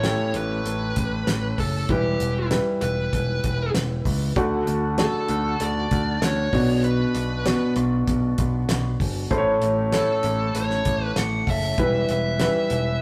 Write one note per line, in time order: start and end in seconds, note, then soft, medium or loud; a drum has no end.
0.00 0.11 A1 medium
0.00 0.31 A2 medium
0.00 0.04 A3 medium
0.00 1.87 A3 medium
0.00 1.16 A3 medium
0.00 1.87 C#4 medium
0.00 0.04 E4 medium
0.00 4.33 E4 medium
0.00 0.36 C#5 medium
0.00 1.92 C#5 medium
0.00 snare loud
0.00 closed hi-hat medium
0.04 1.16 E4 medium
0.04 1.16 G4 medium
0.34 0.60 A1 medium
0.34 1.63 B4 medium
0.34 closed hi-hat medium
0.66 0.91 A1 medium
0.66 closed hi-hat medium
0.96 1.22 A1 medium
0.96 kick medium
0.96 closed hi-hat medium
1.27 1.53 A1 medium
1.27 snare medium
1.27 closed hi-hat medium
1.58 1.84 F#1 medium
1.58 1.90 A4 medium
1.58 kick medium
1.58 open hi-hat medium
1.89 2.15 E1 medium
1.89 4.34 E3 medium
1.89 2.79 E3 medium
1.89 2.46 G3 medium
1.89 2.46 E4 medium
1.89 4.34 G4 medium
1.89 2.48 G4 medium
1.89 4.34 B4 medium
1.89 2.46 B4 medium
1.89 kick loud
1.89 closed hi-hat medium
2.20 2.58 E1 medium
2.20 closed hi-hat medium
2.51 3.63 G3 medium
2.51 3.63 E4 medium
2.51 3.64 B4 medium
2.51 snare medium
2.51 closed hi-hat medium
2.81 3.07 E1 medium
2.81 3.71 B4 medium
2.81 closed hi-hat medium
3.13 3.38 E1 medium
3.13 kick medium
3.13 closed hi-hat medium
3.44 3.69 E1 medium
3.44 kick medium
3.44 closed hi-hat medium
3.74 4.00 E1 medium
3.74 snare loud
3.74 closed hi-hat loud
4.05 4.31 C#2 medium
4.05 kick medium
4.05 open hi-hat medium
4.36 4.62 D2 medium
4.36 6.51 D3 medium
4.36 5.26 D3 medium
4.36 4.93 A3 medium
4.36 9.27 D4 medium
4.36 9.27 F#4 medium
4.36 4.93 F#4 medium
4.36 6.51 A4 medium
4.36 4.93 D5 medium
4.36 kick loud
4.36 closed hi-hat medium
4.67 5.05 D2 medium
4.67 closed hi-hat medium
4.98 6.11 A3 medium
4.98 6.11 F#4 medium
4.98 5.63 A4 medium
4.98 6.11 D5 medium
4.98 snare loud
4.98 closed hi-hat medium
5.28 5.55 D2 medium
5.28 closed hi-hat medium
5.60 5.86 D2 medium
5.60 6.22 D5 medium
5.60 closed hi-hat medium
5.91 6.17 D2 medium
5.91 kick medium
5.91 closed hi-hat medium
6.22 6.47 D2 medium
6.22 6.84 C#5 medium
6.22 snare loud
6.22 closed hi-hat medium
6.52 7.04 B1 medium
6.52 7.42 B2 medium
6.52 9.28 B3 medium
6.52 7.37 B3 medium
6.52 7.38 D4 medium
6.52 7.37 F#4 medium
6.52 kick loud
6.52 open hi-hat medium
6.84 7.73 B4 medium
6.84 closed hi-hat medium
7.15 7.53 B1 medium
7.15 closed hi-hat medium
7.46 8.58 B3 medium
7.46 8.58 F#4 medium
7.46 8.58 D5 medium
7.46 snare medium
7.46 closed hi-hat medium
7.76 8.02 B1 loud
7.76 closed hi-hat medium
8.08 8.33 B1 medium
8.08 kick medium
8.08 closed hi-hat medium
8.38 8.64 B1 medium
8.38 kick medium
8.38 closed hi-hat medium
8.69 8.95 B1 medium
8.69 snare medium
8.69 closed hi-hat loud
9.00 9.26 G1 medium
9.00 kick medium
9.00 open hi-hat medium
9.30 9.56 A1 medium
9.30 10.20 A2 medium
9.30 11.75 A3 medium
9.30 9.87 A3 medium
9.30 11.76 C#4 medium
9.30 13.02 E4 medium
9.30 9.87 E4 medium
9.30 9.37 C5 medium
9.30 kick loud
9.30 closed hi-hat medium
9.37 9.91 C#5 medium
9.62 10.00 A1 medium
9.62 closed hi-hat medium
9.92 11.06 A3 medium
9.92 11.06 E4 medium
9.92 10.57 A4 medium
9.92 11.05 C#5 medium
9.92 snare medium
9.92 closed hi-hat medium
10.23 10.49 A1 loud
10.23 closed hi-hat medium
10.55 10.80 A1 medium
10.55 11.04 C#5 medium
10.55 closed hi-hat medium
10.70 snare soft
10.85 11.11 A1 medium
10.85 kick medium
10.85 closed hi-hat medium
11.04 11.19 B4 medium
11.16 11.42 A1 medium
11.16 11.49 F#5 loud
11.16 snare medium
11.16 closed hi-hat loud
11.47 11.73 F#1 medium
11.47 12.10 E5 loud
11.47 kick medium
11.47 open hi-hat medium
11.78 12.04 E1 medium
11.78 13.02 E3 medium
11.78 12.67 E3 medium
11.78 12.35 G3 medium
11.78 12.35 E4 medium
11.78 13.02 G4 medium
11.78 13.02 B4 medium
11.78 12.35 B4 medium
11.78 kick loud
11.78 closed hi-hat medium
12.09 12.47 E1 medium
12.09 12.99 E5 medium
12.09 closed hi-hat medium
12.40 13.02 G3 medium
12.40 13.02 E4 medium
12.40 13.02 B4 medium
12.40 snare loud
12.40 closed hi-hat medium
12.70 12.97 E1 medium
12.70 closed hi-hat medium